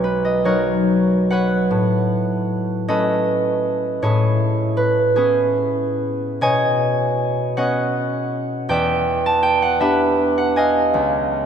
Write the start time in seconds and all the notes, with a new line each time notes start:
Already playing: B1 F#3 C#4 F#4 A#4 C#5 D#5 F#5
0.04 B4
0.25 D#5
0.44 F#3 D#4 F#4 A#4 C#5
1.30 B4 C#5 F#5
1.71 A2
2.88 A3 C#4 A4 B4 D#5
4.02 A2 E4 G#4 C#5
4.77 B4
5.16 B3 C#4 E4 G#4
6.41 B2 C#5 D#5 G#5
7.57 B3 C#4 C#5 D#5 F#5
8.69 E2 D5 E5 G5
9.26 A5
9.43 G5
9.62 F#5
9.80 B3 D4 G4 B4 E5
10.38 F#5
10.56 D#5 F5 G#5
10.94 C#2